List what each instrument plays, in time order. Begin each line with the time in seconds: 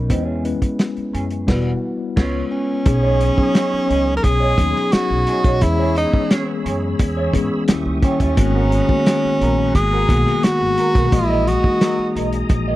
Already playing: tine electric piano F#3 B3 C#4 D#4 A#4
0.09 upright bass E2, tine electric piano G#3 B3 C#4 E4 B4, clean electric guitar C4 D#4 G4, kick, closed hi-hat
0.23 clean electric guitar C#4 E4 G#4
0.44 tine electric piano G#3 B3 C#4 E4 B4, closed hi-hat
0.62 muted clean electric guitar stroke, muted upright bass stroke, kick, closed hi-hat
0.79 muted clean electric guitar stroke, snare, closed hi-hat
0.97 muted upright bass stroke, closed hi-hat
1.13 upright bass F#2, clean electric guitar C#4 E4 G#4, closed hi-hat
1.31 muted clean electric guitar stroke, closed hi-hat
1.47 upright bass E1, tine electric piano G3 B3 E4 F#4 B4, clean electric guitar G3 B3 F#4, kick, snare, crash
2.16 upright bass C#2, tine electric piano G#3 B3 C#4 F4 B4, clean electric guitar C#4 F4 C#5, kick, snare, crash
2.52 tenor saxophone C#4
2.85 upright bass B1, tine electric piano F#3 B3 C#4 D#4 G#4, tonewheel organ G#4 C#5 B5 D#6, muted clean electric guitar stroke, kick, closed hi-hat
3.03 clean electric guitar D#4 G#4 C#5
3.20 muted clean electric guitar stroke, closed hi-hat
3.37 tine electric piano F#3 B3 C#4 D#4 G#4, muted clean electric guitar stroke, muted upright bass stroke, kick
3.54 clean electric guitar D#4 G#4 C#5, snare, closed hi-hat
3.72 muted clean electric guitar stroke, muted upright bass stroke
3.89 upright bass C#2, clean electric guitar D#4 G#4 C#5, closed hi-hat
4.06 muted clean electric guitar stroke
4.17 tenor saxophone A#4
4.23 upright bass B1, tenor saxophone G#4, muted clean electric guitar stroke, kick, closed hi-hat
4.40 clean electric guitar D#4 G#4 C#5
4.58 upright bass D#2, tine electric piano F#3 B3 C#4 D#4 G#4, kick, closed hi-hat
4.75 muted clean electric guitar stroke, snare
4.92 tenor saxophone F#4, muted clean electric guitar stroke, muted upright bass stroke, snare, closed hi-hat
5.10 upright bass B1, muted clean electric guitar stroke
5.27 clean electric guitar D#4 G#4 C#5, closed hi-hat
5.44 upright bass B1, clean electric guitar D#4 G#4 C#5, kick, closed hi-hat
5.61 upright bass E2, tine electric piano E3 G#3 B3 C#4 G#4, tenor saxophone E4, tonewheel organ E6, muted clean electric guitar stroke, kick, closed hi-hat
5.79 clean electric guitar E4 G#4 C#5
5.96 tenor saxophone D#4, muted clean electric guitar stroke, closed hi-hat
6.13 tine electric piano E3 G#3 B3 C#4 G#4, muted upright bass stroke, muted clean electric guitar stroke, kick
6.31 clean electric guitar E4 G#4 C#5, snare, closed hi-hat
6.48 muted clean electric guitar stroke
6.65 upright bass F#2, clean electric guitar E4 G#4 C#5, closed hi-hat
6.82 muted clean electric guitar stroke
6.99 upright bass E2, muted clean electric guitar stroke, kick, closed hi-hat
7.17 clean electric guitar E4 G#4 C#5
7.33 upright bass G#2, tine electric piano E3 G#3 B3 C#4 G#4, kick, closed hi-hat
7.52 muted clean electric guitar stroke
7.68 upright bass D#2, tine electric piano D#3 G3 A#3 C#4 E4, tonewheel organ G4 E5 C#6 D#6, muted clean electric guitar stroke, snare, closed hi-hat
7.85 upright bass C#2, muted clean electric guitar stroke
8.02 tenor saxophone C#4, clean electric guitar E4 G4 C#5, kick, closed hi-hat
8.20 upright bass D#2, clean electric guitar E4 G4 C#5, kick, closed hi-hat
8.37 upright bass G#1, tine electric piano D#3 G#3 A#3 B3 F#4, tonewheel organ G#4 F#5 A#5 B5, muted clean electric guitar stroke, kick, closed hi-hat
8.55 clean electric guitar B3 F#4 A#4
8.72 muted clean electric guitar stroke, closed hi-hat
8.88 tine electric piano D#3 G#3 A#3 B3 F#4, muted upright bass stroke, muted clean electric guitar stroke, kick
9.06 clean electric guitar B3 F#4 A#4, snare, closed hi-hat
9.24 muted clean electric guitar stroke, muted upright bass stroke
9.41 upright bass A#1, clean electric guitar B3 F#4 A#4, closed hi-hat
9.59 muted clean electric guitar stroke
9.75 upright bass G#1, tenor saxophone G#4, muted clean electric guitar stroke, kick, closed hi-hat
9.93 clean electric guitar B3 F#4 A#4
10.09 upright bass B1, tine electric piano D#3 G#3 A#3 B3 F#4, muted clean electric guitar stroke, kick, closed hi-hat
10.27 muted clean electric guitar stroke, snare
10.43 tenor saxophone F#4, muted upright bass stroke, snare, closed hi-hat
10.61 upright bass G#1, muted clean electric guitar stroke
10.78 clean electric guitar B3 F#4 A#4, closed hi-hat
10.95 upright bass B1, clean electric guitar B3 F#4 A#4, kick, closed hi-hat
11.12 upright bass A#1, tine electric piano E3 G#3 A#3 F#4 D#5, tenor saxophone E4, tonewheel organ D#5 D#6, muted clean electric guitar stroke, kick, closed hi-hat
11.30 clean electric guitar E4 A#4 D#5
11.47 tenor saxophone F#4, closed hi-hat
11.63 tine electric piano E3 G#3 A#3 D#4 F#4, muted clean electric guitar stroke, muted upright bass stroke, kick
11.81 clean electric guitar E4 A#4 D#5, snare, closed hi-hat
11.98 muted clean electric guitar stroke, muted upright bass stroke
12.15 upright bass B1, clean electric guitar E4 A#4 D#5, closed hi-hat
12.33 muted clean electric guitar stroke, closed hi-hat
12.49 upright bass A#1, muted clean electric guitar stroke, kick, closed hi-hat
12.68 clean electric guitar E4 A#4 D#5